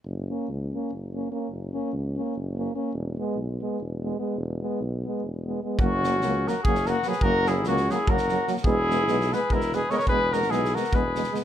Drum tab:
SD |--------------|--------------|--------------|--------------|
BD |--------------|--------------|--------------|--------------|

SD |--o-o-o--oo-oo|--o-ooo--oo-oo|--o-ooo--oo-oo|--oooooo--ooo-|
BD |o-------o-----|o-------o-----|o-------o-----|o-------o-----|